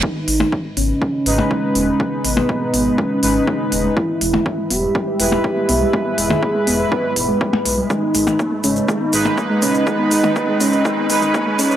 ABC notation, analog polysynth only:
X:1
M:4/4
L:1/8
Q:1/4=122
K:G#m
V:1 name="Analog polysynth"
z4 z [G,DB]3- | [G,DB]4- [G,DB] [G,DB]3 | z4 z [G,EB]3- | [G,EB]4- [G,EB] z3 |
z4 z [G,DB]3- | [G,DB]4- [G,DB] [G,DB]3 |]